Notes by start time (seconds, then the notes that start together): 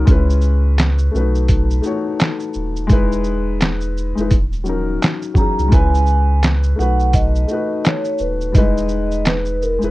0.05 C#2 G#3 C#4 E4, kick, closed hi-hat, shaker
0.11 B4
0.30 shaker
0.41 shaker
0.78 snare, clap, closed hi-hat, shaker
0.98 shaker
1.11 B1 A3 C#4 F#4
1.15 B4, shaker
1.20 D#4
1.35 shaker
1.48 kick, closed hi-hat, shaker
1.70 shaker
1.82 A3 D#4 F#4, shaker
1.87 C#5
2.20 snare, clap, closed hi-hat, shaker
2.40 shaker
2.54 D#1, shaker
2.76 shaker
2.87 E1 G#3 D#4 E4, kick, closed hi-hat, shaker
2.93 B4
3.12 shaker
3.24 shaker
3.61 snare, clap, closed hi-hat, shaker
3.81 shaker
3.98 shaker
4.15 E1 G#3 D#4 E4, shaker
4.21 B4
4.31 D#1, kick, closed hi-hat, shaker
4.53 shaker
4.64 F#3 C#4 D#4, shaker
4.69 A#4
5.02 snare, clap, closed hi-hat, shaker
5.22 shaker
5.34 F#3 C#4 D#4 A#5, kick, shaker
5.40 G#4
5.59 C2, shaker
5.68 G#3 C#4 E4, closed hi-hat, shaker
5.72 C#2 B4 G#5, kick
5.95 shaker
6.06 shaker
6.43 snare, clap, closed hi-hat, shaker
6.63 shaker
6.76 B1 A3 D#4 F#4 F#5
6.80 B4, shaker
7.00 shaker
7.13 D#5, kick, closed hi-hat, shaker
7.35 shaker
7.47 A3 D#4 F#4, shaker
7.53 B4
7.85 C#5, snare, clap, closed hi-hat, shaker
8.05 shaker
8.18 D#1 B4, shaker
8.41 shaker
8.52 E1 G3 D#4 E4 D#5, kick, closed hi-hat, shaker
8.58 G#3 B4
8.77 shaker
8.89 shaker
9.11 shaker
9.25 B4, snare, clap, closed hi-hat, shaker
9.45 shaker
9.62 A#4, shaker
9.78 G#3 D#4 E4, shaker
9.83 E1 B4